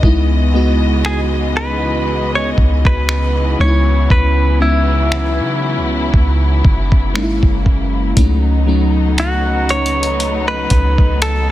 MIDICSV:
0, 0, Header, 1, 6, 480
1, 0, Start_track
1, 0, Tempo, 1016949
1, 15, Time_signature, 4, 2, 24, 8
1, 5434, End_track
2, 0, Start_track
2, 0, Title_t, "Clean electric guitar"
2, 0, Program_c, 0, 27
2, 499, Note_on_c, 0, 68, 86
2, 564, Note_off_c, 0, 68, 0
2, 740, Note_on_c, 0, 71, 99
2, 1088, Note_off_c, 0, 71, 0
2, 1111, Note_on_c, 0, 73, 97
2, 1175, Note_off_c, 0, 73, 0
2, 1352, Note_on_c, 0, 71, 101
2, 1702, Note_off_c, 0, 71, 0
2, 1704, Note_on_c, 0, 73, 94
2, 1940, Note_off_c, 0, 73, 0
2, 1942, Note_on_c, 0, 71, 89
2, 2162, Note_off_c, 0, 71, 0
2, 2180, Note_on_c, 0, 64, 80
2, 3599, Note_off_c, 0, 64, 0
2, 4341, Note_on_c, 0, 66, 84
2, 4581, Note_on_c, 0, 73, 100
2, 4585, Note_off_c, 0, 66, 0
2, 4945, Note_off_c, 0, 73, 0
2, 4947, Note_on_c, 0, 71, 98
2, 5295, Note_off_c, 0, 71, 0
2, 5297, Note_on_c, 0, 69, 92
2, 5422, Note_off_c, 0, 69, 0
2, 5434, End_track
3, 0, Start_track
3, 0, Title_t, "FM electric piano"
3, 0, Program_c, 1, 5
3, 0, Control_c, 1, 64, 127
3, 11, Note_on_c, 1, 56, 79
3, 15, Note_on_c, 1, 59, 77
3, 19, Note_on_c, 1, 63, 74
3, 21, Control_c, 1, 64, 0
3, 23, Note_on_c, 1, 64, 98
3, 113, Control_c, 1, 64, 127
3, 169, Note_off_c, 1, 56, 0
3, 171, Note_off_c, 1, 59, 0
3, 173, Note_off_c, 1, 63, 0
3, 175, Note_off_c, 1, 64, 0
3, 252, Note_on_c, 1, 56, 88
3, 257, Note_on_c, 1, 59, 78
3, 261, Note_on_c, 1, 63, 81
3, 265, Note_on_c, 1, 66, 99
3, 855, Note_off_c, 1, 56, 0
3, 857, Note_off_c, 1, 59, 0
3, 860, Note_off_c, 1, 63, 0
3, 861, Note_off_c, 1, 66, 0
3, 1692, Note_on_c, 1, 56, 76
3, 1696, Note_on_c, 1, 59, 69
3, 1700, Note_on_c, 1, 61, 70
3, 1702, Control_c, 1, 64, 0
3, 1705, Note_on_c, 1, 63, 72
3, 1733, Note_off_c, 1, 63, 0
3, 1735, Note_on_c, 1, 64, 88
3, 1775, Control_c, 1, 64, 127
3, 2085, Note_off_c, 1, 56, 0
3, 2087, Note_off_c, 1, 59, 0
3, 2089, Note_off_c, 1, 61, 0
3, 2107, Note_off_c, 1, 64, 0
3, 2173, Note_on_c, 1, 56, 73
3, 2176, Note_on_c, 1, 59, 63
3, 2181, Note_on_c, 1, 61, 66
3, 2185, Note_on_c, 1, 63, 65
3, 2213, Note_off_c, 1, 63, 0
3, 2775, Note_off_c, 1, 56, 0
3, 2777, Note_off_c, 1, 59, 0
3, 2780, Note_off_c, 1, 61, 0
3, 3370, Note_on_c, 1, 56, 85
3, 3373, Note_on_c, 1, 58, 77
3, 3378, Note_on_c, 1, 61, 79
3, 3381, Control_c, 1, 64, 0
3, 3382, Note_on_c, 1, 63, 78
3, 3412, Note_off_c, 1, 63, 0
3, 3413, Note_on_c, 1, 64, 99
3, 3458, Control_c, 1, 64, 127
3, 3764, Note_off_c, 1, 56, 0
3, 3766, Note_off_c, 1, 58, 0
3, 3768, Note_off_c, 1, 61, 0
3, 3786, Note_off_c, 1, 64, 0
3, 3849, Note_on_c, 1, 54, 88
3, 3853, Note_on_c, 1, 57, 74
3, 3858, Note_on_c, 1, 61, 78
3, 3861, Control_c, 1, 64, 0
3, 3862, Note_on_c, 1, 63, 92
3, 3933, Control_c, 1, 64, 127
3, 4008, Note_off_c, 1, 54, 0
3, 4010, Note_off_c, 1, 57, 0
3, 4012, Note_off_c, 1, 61, 0
3, 4014, Note_off_c, 1, 63, 0
3, 4090, Note_on_c, 1, 54, 88
3, 4094, Note_on_c, 1, 57, 80
3, 4098, Note_on_c, 1, 61, 80
3, 4102, Note_on_c, 1, 63, 90
3, 4694, Note_off_c, 1, 54, 0
3, 4696, Note_off_c, 1, 57, 0
3, 4698, Note_off_c, 1, 61, 0
3, 4700, Note_off_c, 1, 63, 0
3, 5434, End_track
4, 0, Start_track
4, 0, Title_t, "String section"
4, 0, Program_c, 2, 48
4, 0, Note_on_c, 2, 49, 75
4, 0, Note_on_c, 2, 59, 68
4, 0, Note_on_c, 2, 75, 81
4, 14, Note_on_c, 2, 52, 67
4, 16, Note_on_c, 2, 56, 70
4, 1674, Note_off_c, 2, 75, 0
4, 1679, Note_off_c, 2, 56, 0
4, 1695, Note_on_c, 2, 54, 69
4, 1696, Note_on_c, 2, 64, 81
4, 3355, Note_off_c, 2, 59, 0
4, 3373, Note_on_c, 2, 58, 66
4, 3836, Note_off_c, 2, 52, 0
4, 3836, Note_off_c, 2, 54, 0
4, 3837, Note_off_c, 2, 64, 0
4, 3849, Note_off_c, 2, 58, 0
4, 3857, Note_on_c, 2, 54, 69
4, 3857, Note_on_c, 2, 57, 67
4, 3857, Note_on_c, 2, 59, 70
4, 3858, Note_on_c, 2, 63, 86
4, 5434, Note_off_c, 2, 49, 0
4, 5434, Note_off_c, 2, 54, 0
4, 5434, Note_off_c, 2, 57, 0
4, 5434, Note_off_c, 2, 59, 0
4, 5434, Note_off_c, 2, 63, 0
4, 5434, End_track
5, 0, Start_track
5, 0, Title_t, "808-style bass"
5, 0, Program_c, 3, 38
5, 16, Note_on_c, 3, 37, 97
5, 1197, Note_off_c, 3, 37, 0
5, 1218, Note_on_c, 3, 37, 94
5, 1678, Note_off_c, 3, 37, 0
5, 1698, Note_on_c, 3, 37, 99
5, 1927, Note_off_c, 3, 37, 0
5, 1938, Note_on_c, 3, 37, 97
5, 2549, Note_on_c, 3, 49, 99
5, 2556, Note_off_c, 3, 37, 0
5, 2723, Note_on_c, 3, 37, 92
5, 2731, Note_off_c, 3, 49, 0
5, 2888, Note_off_c, 3, 37, 0
5, 2898, Note_on_c, 3, 37, 101
5, 3127, Note_off_c, 3, 37, 0
5, 3138, Note_on_c, 3, 30, 107
5, 3379, Note_on_c, 3, 32, 94
5, 3386, Note_off_c, 3, 30, 0
5, 3500, Note_off_c, 3, 32, 0
5, 3507, Note_on_c, 3, 30, 99
5, 3843, Note_off_c, 3, 30, 0
5, 3856, Note_on_c, 3, 37, 102
5, 5037, Note_off_c, 3, 37, 0
5, 5056, Note_on_c, 3, 37, 98
5, 5434, Note_off_c, 3, 37, 0
5, 5434, End_track
6, 0, Start_track
6, 0, Title_t, "Drums"
6, 15, Note_on_c, 9, 36, 104
6, 62, Note_off_c, 9, 36, 0
6, 494, Note_on_c, 9, 26, 116
6, 541, Note_off_c, 9, 26, 0
6, 1217, Note_on_c, 9, 36, 85
6, 1264, Note_off_c, 9, 36, 0
6, 1346, Note_on_c, 9, 36, 92
6, 1393, Note_off_c, 9, 36, 0
6, 1457, Note_on_c, 9, 26, 96
6, 1505, Note_off_c, 9, 26, 0
6, 1937, Note_on_c, 9, 36, 101
6, 1984, Note_off_c, 9, 36, 0
6, 2416, Note_on_c, 9, 26, 114
6, 2463, Note_off_c, 9, 26, 0
6, 2896, Note_on_c, 9, 36, 90
6, 2944, Note_off_c, 9, 36, 0
6, 3137, Note_on_c, 9, 36, 93
6, 3184, Note_off_c, 9, 36, 0
6, 3266, Note_on_c, 9, 36, 91
6, 3313, Note_off_c, 9, 36, 0
6, 3377, Note_on_c, 9, 26, 105
6, 3424, Note_off_c, 9, 26, 0
6, 3506, Note_on_c, 9, 36, 77
6, 3553, Note_off_c, 9, 36, 0
6, 3615, Note_on_c, 9, 36, 83
6, 3662, Note_off_c, 9, 36, 0
6, 3855, Note_on_c, 9, 36, 107
6, 3855, Note_on_c, 9, 42, 73
6, 3903, Note_off_c, 9, 36, 0
6, 3903, Note_off_c, 9, 42, 0
6, 4333, Note_on_c, 9, 42, 62
6, 4334, Note_on_c, 9, 26, 116
6, 4380, Note_off_c, 9, 42, 0
6, 4381, Note_off_c, 9, 26, 0
6, 4575, Note_on_c, 9, 42, 36
6, 4622, Note_off_c, 9, 42, 0
6, 4653, Note_on_c, 9, 42, 50
6, 4700, Note_off_c, 9, 42, 0
6, 4734, Note_on_c, 9, 42, 60
6, 4781, Note_off_c, 9, 42, 0
6, 4814, Note_on_c, 9, 42, 59
6, 4862, Note_off_c, 9, 42, 0
6, 5052, Note_on_c, 9, 42, 74
6, 5055, Note_on_c, 9, 36, 93
6, 5099, Note_off_c, 9, 42, 0
6, 5102, Note_off_c, 9, 36, 0
6, 5184, Note_on_c, 9, 36, 87
6, 5231, Note_off_c, 9, 36, 0
6, 5295, Note_on_c, 9, 42, 62
6, 5296, Note_on_c, 9, 26, 104
6, 5342, Note_off_c, 9, 42, 0
6, 5343, Note_off_c, 9, 26, 0
6, 5434, End_track
0, 0, End_of_file